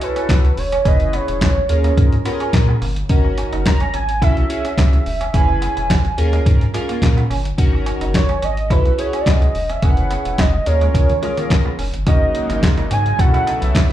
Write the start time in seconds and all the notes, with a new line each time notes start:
0.01 C#4 E4 F#4 A4 B4, closed hi-hat
0.16 C#4, closed hi-hat
0.29 C#2 B3, kick, snare, clap, closed hi-hat
0.45 muted clean electric guitar stroke, closed hi-hat
0.57 E1 C#5, open hi-hat
0.72 C#4, closed hi-hat
0.85 F#1 C#4 E4 G#4 B4 D#5, kick, closed hi-hat
1.00 closed hi-hat
1.13 B3 C#5, closed hi-hat
1.28 E1, muted clean electric guitar stroke, closed hi-hat
1.41 G#1 G#3, kick, snare, clap, closed hi-hat
1.56 muted clean electric guitar stroke
1.69 D#2 C#4 F4 G#4 A#4, closed hi-hat
1.84 A#3, closed hi-hat
1.97 G#2, muted clean electric guitar stroke, kick, closed hi-hat
2.12 closed hi-hat
2.25 B3 C#4 F4 G4 A#4, closed hi-hat
2.32 G#4
2.40 C#4, closed hi-hat
2.53 A#2, muted clean electric guitar stroke, kick, snare, clap, closed hi-hat
2.69 B3
2.82 G1 A#3, open hi-hat
2.96 closed hi-hat
3.09 G#1 C#4 D#4 F#4 A#4, kick, closed hi-hat
3.25 muted clean electric guitar stroke
3.38 C#4, closed hi-hat
3.53 F#1 D#4, closed hi-hat
3.66 G#1 A#5, muted clean electric guitar stroke, kick, snare, clap, closed hi-hat
3.80 C#4, closed hi-hat
3.94 G#1 C#4 G#5, closed hi-hat
4.09 closed hi-hat
4.21 B1 C#4 E4 F#4 A4 E5, kick, closed hi-hat
4.37 muted clean electric guitar stroke, closed hi-hat
4.49 C#4 E4 F#4 G#4 E5, closed hi-hat
4.65 C#4, closed hi-hat
4.78 C#2 B3, kick, snare, clap, closed hi-hat
4.93 muted clean electric guitar stroke, closed hi-hat
5.06 E1, open hi-hat
5.21 C#4, closed hi-hat
5.33 F#1 C#4 E4 G#4 B4 G#5, kick, closed hi-hat
5.62 B3, closed hi-hat
5.77 E1, muted clean electric guitar stroke, closed hi-hat
5.90 G#1 B3, kick, snare, clap, closed hi-hat
6.05 muted clean electric guitar stroke, closed hi-hat
6.17 D#2 C#4 F4 G#4 A#4, closed hi-hat
6.33 G#3, closed hi-hat
6.46 G#2, muted clean electric guitar stroke, kick, closed hi-hat
6.61 closed hi-hat
6.74 G#3 C#4 F4 G#4 A#4, closed hi-hat
6.89 A#3, closed hi-hat
7.02 A#2, muted clean electric guitar stroke, kick, snare, clap, closed hi-hat
7.17 B3, closed hi-hat
7.30 G1 C#4, open hi-hat
7.45 closed hi-hat
7.58 G#1 C#4 D#4 F#4 A#4, kick, closed hi-hat
7.73 muted clean electric guitar stroke
7.86 C#4, closed hi-hat
8.01 F#1 D#4, closed hi-hat
8.14 G#1 C#5, muted clean electric guitar stroke, kick, snare, clap, closed hi-hat
8.29 C#4, closed hi-hat
8.42 G#1 C#4 D#5, closed hi-hat
8.57 closed hi-hat
8.70 B1 C#4 E4 F#4 A4 B4, kick, closed hi-hat
8.85 muted clean electric guitar stroke, closed hi-hat
8.98 C#4 E4 F#4 G#4 C#5, closed hi-hat
9.13 C#4, closed hi-hat
9.21 D5
9.26 C#2 B3 D#5, kick, snare, clap, closed hi-hat
9.42 muted clean electric guitar stroke, closed hi-hat
9.55 E1, open hi-hat
9.70 C#4 E5, closed hi-hat
9.82 F#1 C#4 E4 G#4 A#4 F#5, kick, closed hi-hat
9.89 B4
9.97 closed hi-hat
10.11 B3, closed hi-hat
10.25 E1, muted clean electric guitar stroke, closed hi-hat
10.38 F#1 B3 D#5, kick, snare, clap, closed hi-hat
10.54 muted clean electric guitar stroke
10.66 D#2 C#4 F4 G#4 A#4 C#5, closed hi-hat
10.81 G#3, closed hi-hat
10.95 muted clean electric guitar stroke, kick, closed hi-hat
11.10 D#3, closed hi-hat
11.22 G#3 C#4 F4 G#4 A#4, closed hi-hat
11.37 D#3 A#3, closed hi-hat
11.50 A#1, muted clean electric guitar stroke, kick, snare, clap, closed hi-hat
11.66 B3
11.79 F1 C#4, open hi-hat
11.94 G1, closed hi-hat
12.06 G#1 C#3 F#3 G#3 A#3 C#4 D#4 F#4 A#4 D#5, kick, closed hi-hat
12.35 muted clean electric guitar stroke, closed hi-hat
12.50 G#1 D#4, closed hi-hat
12.63 muted clean electric guitar stroke, kick, snare, clap, closed hi-hat
12.77 G#1 D#4, closed hi-hat
12.91 G#2 C#4 G#5, closed hi-hat
13.06 closed hi-hat
13.19 B2 F#3 A3 B3 C#4 E4 F#4 A4 F#5, muted clean electric guitar stroke, kick, closed hi-hat
13.34 E4, closed hi-hat
13.47 D#4, closed hi-hat
13.62 B1 E5, closed hi-hat
13.75 kick, snare, clap, closed hi-hat